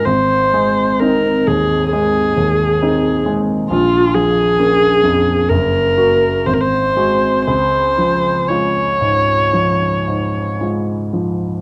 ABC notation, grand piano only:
X:1
M:4/4
L:1/8
Q:1/4=63
K:Db
V:1 name="Grand piano" clef=bass
A,,, A, [CE] E,, A, E,, [CE] A, | B,,, F, [B,D] F,, G,,, [B,G] A,,, [A,G] | D,, F, [A,F] A,, F, A,, [A,F] F, |]